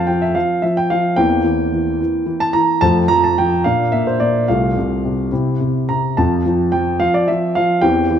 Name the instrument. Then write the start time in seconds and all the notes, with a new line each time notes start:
grand piano
Already playing: F2 F3 A3 C4 F5 G5 A5
0.07 F3 G5
0.22 E5
0.35 F3 F5
0.62 F3 E5
0.77 G5
0.90 F3 F5
1.16 E2 E3 A#3 C4 G5
1.44 E3
1.72 E3
2.00 E3
2.26 E3
2.40 A5
2.53 E3 A#5
2.81 F2 F3 A3 C4 A5
3.08 F3 A#5
3.24 A5
3.38 F3 G5
3.64 A#2 A#3 D4 F5
3.92 A#2 E5
4.07 C5
4.20 A#2 D5
4.48 C2 C3 A3 F4 F5
4.77 C3
5.05 C3
5.32 C3 C4 E4
5.61 C3
5.89 C3 A#5
6.17 F2 F3 C4 F4 A5
6.46 F3
6.72 F3 G5
7.00 F3 F5
7.14 D5
7.28 F3 E5
7.55 F3 F5
7.81 E2 E3 C4 G4 G5
8.11 E3